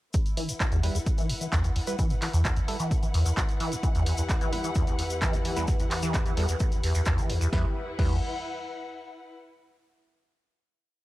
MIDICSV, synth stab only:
0, 0, Header, 1, 2, 480
1, 0, Start_track
1, 0, Key_signature, 1, "minor"
1, 0, Tempo, 461538
1, 148, Time_signature, 4, 2, 24, 8
1, 11482, End_track
2, 0, Start_track
2, 0, Title_t, "Synth stab"
2, 0, Program_c, 0, 62
2, 867, Note_on_c, 0, 55, 79
2, 867, Note_on_c, 0, 64, 68
2, 867, Note_on_c, 0, 71, 87
2, 1010, Note_off_c, 0, 55, 0
2, 1010, Note_off_c, 0, 64, 0
2, 1010, Note_off_c, 0, 71, 0
2, 1948, Note_on_c, 0, 64, 82
2, 1948, Note_on_c, 0, 71, 106
2, 1949, Note_on_c, 0, 55, 93
2, 2037, Note_off_c, 0, 55, 0
2, 2037, Note_off_c, 0, 64, 0
2, 2037, Note_off_c, 0, 71, 0
2, 2788, Note_on_c, 0, 64, 90
2, 2788, Note_on_c, 0, 69, 107
2, 2789, Note_on_c, 0, 55, 96
2, 2877, Note_off_c, 0, 55, 0
2, 2877, Note_off_c, 0, 64, 0
2, 2877, Note_off_c, 0, 69, 0
2, 4707, Note_on_c, 0, 64, 70
2, 4707, Note_on_c, 0, 71, 87
2, 4708, Note_on_c, 0, 55, 78
2, 4850, Note_off_c, 0, 55, 0
2, 4850, Note_off_c, 0, 64, 0
2, 4850, Note_off_c, 0, 71, 0
2, 5788, Note_on_c, 0, 55, 97
2, 5788, Note_on_c, 0, 64, 88
2, 5788, Note_on_c, 0, 71, 102
2, 5877, Note_off_c, 0, 55, 0
2, 5877, Note_off_c, 0, 64, 0
2, 5877, Note_off_c, 0, 71, 0
2, 6628, Note_on_c, 0, 55, 99
2, 6628, Note_on_c, 0, 64, 88
2, 6628, Note_on_c, 0, 69, 111
2, 6717, Note_off_c, 0, 55, 0
2, 6717, Note_off_c, 0, 64, 0
2, 6717, Note_off_c, 0, 69, 0
2, 7827, Note_on_c, 0, 55, 87
2, 7827, Note_on_c, 0, 64, 79
2, 7827, Note_on_c, 0, 71, 92
2, 7961, Note_off_c, 0, 55, 0
2, 7961, Note_off_c, 0, 64, 0
2, 7961, Note_off_c, 0, 71, 0
2, 8306, Note_on_c, 0, 55, 86
2, 8307, Note_on_c, 0, 64, 77
2, 8307, Note_on_c, 0, 71, 96
2, 8486, Note_off_c, 0, 55, 0
2, 8486, Note_off_c, 0, 64, 0
2, 8486, Note_off_c, 0, 71, 0
2, 11482, End_track
0, 0, End_of_file